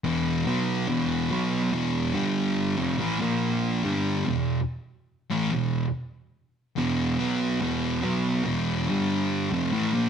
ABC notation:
X:1
M:4/4
L:1/16
Q:1/4=71
K:Em
V:1 name="Distorted electric guitar" clef=bass
[E,,B,,E,]2 [B,,F,B,]2 [E,,B,,E,]2 [B,,F,B,]2 [E,,B,,E,]2 [G,,D,G,]3 [=F,,C,] [A,,E,] [^A,,=F,^A,]- | [^A,,=F,^A,]2 [G,,D,G,]2 [E,,B,,]2 z3 [=A,,E,] [E,,B,,]2 z4 | [E,,B,,E,]2 [B,,F,B,]2 [E,,B,,E,]2 [B,,F,B,]2 [E,,B,,E,]2 [G,,D,G,]3 [=F,,C,] [A,,E,] [^A,,=F,^A,] |]
V:2 name="Distorted electric guitar" clef=bass
[E,,B,,E,]2 [B,,F,B,]2 [E,,B,,E,]2 [B,,F,B,]2 [E,,B,,E,]2 [G,,D,G,]3 [=F,,C,] [A,,E,] [^A,,=F,^A,]- | [^A,,=F,^A,]2 [G,,D,G,]2 [E,,B,,]2 z3 [=A,,E,] [E,,B,,]2 z4 | [E,,B,,E,]2 [B,,F,B,]2 [E,,B,,E,]2 [B,,F,B,]2 [E,,B,,E,]2 [G,,D,G,]3 [=F,,C,] [A,,E,] [^A,,=F,^A,] |]